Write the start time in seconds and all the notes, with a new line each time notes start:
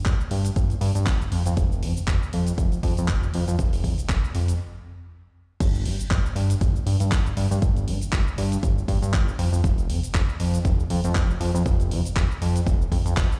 0.06 G1, kick, clap, closed hi-hat, cabasa
0.21 cabasa
0.31 G2, open hi-hat
0.45 closed hi-hat, cabasa
0.56 G1, kick, closed hi-hat, cabasa
0.70 closed hi-hat, cabasa
0.81 G2, open hi-hat
0.95 G2, closed hi-hat, cabasa
1.06 G1, kick, clap, closed hi-hat, cabasa
1.21 cabasa
1.32 F2, open hi-hat
1.46 F2, closed hi-hat, cabasa
1.57 F1, kick, closed hi-hat, cabasa
1.72 cabasa
1.83 F2, open hi-hat
1.97 F1, cabasa
2.07 F1, kick, clap, closed hi-hat, cabasa
2.23 cabasa
2.33 F2, open hi-hat
2.47 closed hi-hat, cabasa
2.58 F1, kick, closed hi-hat, cabasa
2.72 closed hi-hat, cabasa
2.83 F2, kick, open hi-hat
2.97 F2, closed hi-hat, cabasa
3.08 F1, kick, clap, closed hi-hat, cabasa
3.23 cabasa
3.34 F2, open hi-hat
3.48 F2, closed hi-hat, cabasa
3.59 F1, kick, closed hi-hat, cabasa
3.73 open hi-hat, cabasa
3.84 F2, kick, open hi-hat
3.98 F1, closed hi-hat, cabasa
4.09 F1, kick, clap, closed hi-hat, cabasa
4.24 cabasa
4.35 F2, open hi-hat
4.48 closed hi-hat, cabasa
5.60 G1, kick, closed hi-hat, crash, cabasa
5.74 closed hi-hat, cabasa
5.86 G2, open hi-hat
6.00 G1, closed hi-hat, cabasa
6.11 G1, kick, clap, closed hi-hat, cabasa
6.26 cabasa
6.36 G2, open hi-hat
6.50 closed hi-hat, cabasa
6.61 G1, kick, closed hi-hat, cabasa
6.76 cabasa
6.86 G2, open hi-hat
7.00 G2, closed hi-hat, cabasa
7.12 G1, kick, clap, closed hi-hat, cabasa
7.26 cabasa
7.37 G2, open hi-hat
7.51 G2, cabasa
7.62 G1, kick, closed hi-hat, cabasa
7.77 closed hi-hat, cabasa
7.88 G2, open hi-hat
8.01 G1, closed hi-hat, cabasa
8.13 G1, kick, clap, closed hi-hat, cabasa
8.28 cabasa
8.38 G2, open hi-hat
8.52 closed hi-hat, cabasa
8.63 G1, kick, closed hi-hat, cabasa
8.78 cabasa
8.88 G2, kick, open hi-hat
9.02 G2, closed hi-hat, cabasa
9.13 G1, kick, clap, closed hi-hat, cabasa
9.28 cabasa
9.39 F2, open hi-hat
9.52 F2, cabasa
9.64 F1, kick, closed hi-hat, cabasa
9.78 closed hi-hat, cabasa
9.89 F2, open hi-hat
10.03 F1, closed hi-hat, cabasa
10.14 F1, kick, clap, closed hi-hat, cabasa
10.29 cabasa
10.40 F2, open hi-hat
10.54 closed hi-hat, cabasa
10.65 F1, kick, closed hi-hat, cabasa
10.80 cabasa
10.90 F2, open hi-hat
11.04 F2, closed hi-hat, cabasa
11.15 F1, kick, clap, closed hi-hat, cabasa
11.30 cabasa
11.40 F2, open hi-hat
11.54 F2, cabasa
11.66 F1, kick, closed hi-hat, cabasa
11.80 closed hi-hat, cabasa
11.91 F2, open hi-hat
12.05 F1, closed hi-hat, cabasa
12.16 F1, kick, clap, closed hi-hat, cabasa
12.31 cabasa
12.42 F2, open hi-hat
12.56 closed hi-hat, cabasa
12.66 F1, kick, closed hi-hat, cabasa
12.82 cabasa
12.92 F2, kick, open hi-hat
13.05 F2, closed hi-hat, cabasa
13.17 F1, kick, clap, closed hi-hat, cabasa
13.32 cabasa